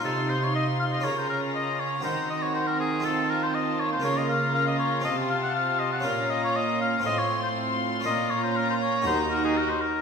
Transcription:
X:1
M:4/4
L:1/16
Q:1/4=120
K:Bbm
V:1 name="Violin section"
c'8 b8- | b8 =a8 | b8 =a8 | b8 c'8 |
b16 |]
V:2 name="Oboe"
=A2 c d e2 f e d c B2 e2 d2 | c2 e d c B A2 =A2 B c e2 d c | d e f2 f e d2 e2 f g f2 e g | f2 e d e2 f2 e d2 c z4 |
e2 d c B c d2 c2 B A B c B2 |]
V:3 name="Violin section"
F16 | G8 F8- | F16- | F8 F8- |
F8 G8 |]
V:4 name="Harpsichord"
[EF]8 [DFB]8 | [CGB]8 [CF=A]8 | [B,FB]8 [CF=A]8 | [DFB]8 [CFc]8 |
[DFB]8 [EGB]8 |]
V:5 name="Harpsichord" clef=bass
C,8 D,8 | E,16 | D,8 C,8 | B,,8 =A,,8 |
B,,8 E,,8 |]
V:6 name="Viola section"
E8 D8 | C16 | B,8 C8 | D8 C8 |
D8 E8 |]
V:7 name="Cello section" clef=bass
C,8 D,8 | E,16 | D,8 C,8 | B,,8 =A,,8 |
B,,8 E,,8 |]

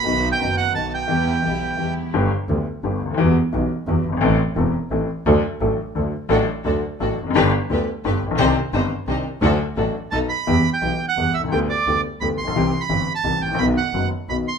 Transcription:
X:1
M:3/4
L:1/16
Q:1/4=173
K:Em
V:1 name="Bandoneon"
b3 g3 f2 a2 g2- | g8- g2 z2 | [K:G] z12 | z12 |
z12 | z12 | z12 | z12 |
z12 | z8 a2 b2- | [K:Em] b3 g4 f3 e2 | g2 d4 z2 b2 c'2- |
c'3 b4 a3 g2 | b2 f4 z2 b2 c'2 |]
V:2 name="String section"
[B,^DF]4 [B,DF]4 [B,DF]4 | [B,EG]4 [B,EG]4 [B,EG]4 | [K:G] z12 | z12 |
z12 | z12 | [DFA]2 z2 [DFA]2 z2 [DFA]2 z2 | [DGB]2 z2 [DGB]2 z2 [DGB]2 z2 |
[D_Ec]2 z2 [DEc]2 z2 [DEc]2 z2 | [DFA]2 z2 [DFA]2 z2 [B,^DA]2 z2 | [K:Em] z12 | z12 |
z12 | z12 |]
V:3 name="Upright piano" clef=bass
[B,,,B,,^D,F,B,F]4 [F,,,F,,D,F,B,F]4 [B,,,B,,D,F,B,F]4 | [E,,E,G,B,G]4 [B,,,B,,E,G,B,G]4 [E,,E,G,B,G]4 | [K:G] [G,,,G,,D,G,B,G]2 z2 [D,,D,G,B,G]2 z2 [G,,,G,,D,G,B,G]2 z/2 ^C,,/2 D,,/2 _E,,/2 | [E,,E,G,B,F]2 z2 [B,,,B,,E,G,B,F]2 z2 [E,,E,G,B,F]2 z/2 F,,,/2 G,,,/2 _A,,,/2 |
[A,,,A,,E,A,CA]2 z2 [E,,,E,,E,A,CA]2 z2 [A,,,A,,E,A,CA]2 z2 | [D,,D,F,A,DA]2 z2 [A,,,A,,F,A,DA]2 z2 [D,,D,F,A,DA]2 z2 | [A,,,A,,F,A,DA]2 z2 [D,,D,F,A,DA]2 z2 [A,,,A,,F,A,DA]2 z/2 E,,/2 =F,,/2 ^F,,/2 | [G,,,G,,D,G,B,G]2 z2 [D,,D,G,B,G]2 z2 [G,,,G,,D,G,B,G]2 z/2 A,,,/2 _B,,,/2 =B,,,/2 |
[C,,C,_E,CDG]2 z2 [G,,,G,,E,CDG]2 z2 [C,,C,E,CDG]2 z2 | [D,,D,F,A,DA]2 z2 [A,,,A,,F,A,DA]2 z2 [B,,,B,,F,B,^DA]2 z2 | [K:Em] [E,,E,G,B,G]2 z2 [B,,,B,,E,G,B,G]2 z2 [E,,E,G,B,G]2 z/2 B,,,/2 C,,/2 ^C,,/2 | [D,,D,G,B,G]2 z2 [D,,D,G,B,G]2 z2 [D,,D,G,B,G]2 z/2 A,,,/2 ^A,,,/2 B,,,/2 |
[C,,C,E,G,CG]2 z2 [G,,,G,,E,G,CG]2 z2 [C,,C,E,G,CG]2 z/2 ^G,,,/2 A,,,/2 ^A,,,/2 | [B,,,B,,^D,F,B,F]2 z2 [F,,,F,,D,F,B,F]2 z2 [B,,,B,,D,F,B,F]2 z2 |]
V:4 name="Double bass" clef=bass
B,,,4 F,,,4 B,,,4 | E,,4 B,,,4 E,,4 | [K:G] G,,,2 z2 D,,2 z2 G,,,2 D,,2 | E,,2 z2 B,,,2 z2 E,,2 G,,,2 |
A,,,2 z2 E,,,2 z2 A,,,2 z2 | D,,2 z2 A,,,2 z2 D,,2 z2 | A,,,2 z2 D,,2 z2 A,,,2 =F,,,2 | G,,,2 z2 D,,2 z2 G,,,2 _B,,,2 |
C,,2 z2 G,,,2 z2 C,,2 z2 | D,,2 z2 A,,,2 z2 B,,,2 z2 | [K:Em] E,,2 z2 B,,,2 z2 E,,2 C,,2 | D,,2 z2 D,,2 z2 D,,2 ^A,,,2 |
C,,2 z2 G,,,2 z2 C,,2 A,,,2 | B,,,2 z2 F,,,2 z2 B,,,2 z2 |]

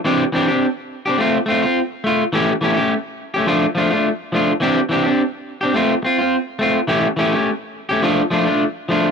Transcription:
X:1
M:4/4
L:1/16
Q:"Swing 16ths" 1/4=105
K:C
V:1 name="Clean electric guitar"
[E,CDG] z [E,CDG] [CDG] z3 [CDG] [A,CF] z [A,CF] [CF] z2 [A,F] z | [E,A,^CG] z [E,A,CG] [A,CG] z3 [A,CG] [F,A,DF] z [F,A,DF] [A,DF] z2 [F,A,DF] z | [E,CDG] z [E,CDG] [CDG] z3 [CDG] [A,CF] z [CF] [CF] z2 [A,CF] z | [E,A,^CG] z [E,A,CG] [A,CG] z3 [A,CG] [F,A,DF] z [F,A,DF] [A,DF] z2 [F,A,DF] z |]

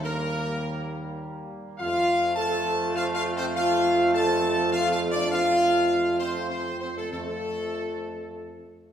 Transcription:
X:1
M:3/4
L:1/16
Q:1/4=102
K:Fmix
V:1 name="Trumpet section"
B8 z4 | f4 a4 (3f2 f2 c2 | f4 a4 (3f2 f2 d2 | f6 c2 c2 c A |
A8- A2 z2 |]
V:2 name="French horn section"
B,8 z4 | F4 A4 (3F2 F2 C2 | F4 A4 (3F2 F2 D2 | F6 C2 C2 C A, |
A,8- A,2 z2 |]
V:3 name="Trombone section" clef=bass
[G,B,]12 | [F,A,]12- | [F,A,]12- | [F,A,]12 |
[F,A,]8- [F,A,]2 z2 |]
V:4 name="Tuba" clef=bass
E,,8- E,,2 z2 | F,,12- | F,,12- | F,,12 |
F,,8- F,,2 z2 |]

